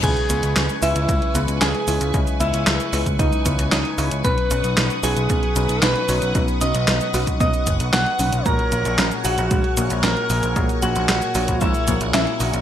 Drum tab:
CC |x---------------|----------------|----------------|----------------|
HH |xxxxxxoxxxxxxxox|xxxxxxoxxxxxxxox|xxxxxxoxxxxxxxox|xxxxxxoxxxxxxxox|
SH |x-xxxxxxx-xxx-xx|xxxxxxxxxxxxx-xx|x-xxxxxxx-xxx-xx|xxxxxxxxxxxxx-xx|
CP |----x-------x---|----x-------x---|----x-------x---|----x-------x---|
SD |----o-------o---|----o-------o---|----o-------o---|----o-------o---|
BD |o-------o-------|o------oo-o-----|o-------o-------|o------oo-o-----|

CC |----------------|----------------|
HH |xxxxxxoxxxxxxxox|xxxxxxoxxxxxxxox|
SH |x-xxxxxxx-xxx-xx|xxxxxxxxxxxxx-xx|
CP |----x-------x---|----x-------x---|
SD |----o-------o---|----o-------o---|
BD |o-------o-------|o------oo-o-----|